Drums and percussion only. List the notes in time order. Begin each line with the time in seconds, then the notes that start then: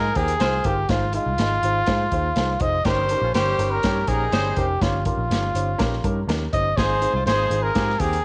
0.15 kick, closed hi-hat
0.28 closed hi-hat
0.40 snare, closed hi-hat
0.64 kick, closed hi-hat
0.89 kick, snare, closed hi-hat
1.13 closed hi-hat
1.38 snare, closed hi-hat
1.63 closed hi-hat
1.86 kick, snare, closed hi-hat
2.12 kick, closed hi-hat
2.36 snare, closed hi-hat
2.60 kick, closed hi-hat
2.85 kick, snare, closed hi-hat
3.09 closed hi-hat
3.34 snare, closed hi-hat
3.59 closed hi-hat
3.83 kick, snare, closed hi-hat
4.07 kick, closed hi-hat
4.32 snare, closed hi-hat
4.56 kick, closed hi-hat
4.82 kick, snare, closed hi-hat
5.05 kick, closed hi-hat
5.31 snare, closed hi-hat
5.55 closed hi-hat
5.79 kick, snare, closed hi-hat
5.93 snare
6.04 kick, closed hi-hat
6.29 snare, closed hi-hat
6.53 kick, closed hi-hat
6.78 kick, snare, closed hi-hat
7.02 closed hi-hat
7.27 snare, closed hi-hat
7.51 closed hi-hat
7.75 kick, snare, closed hi-hat
7.89 snare
8.00 kick, closed hi-hat
8.13 closed hi-hat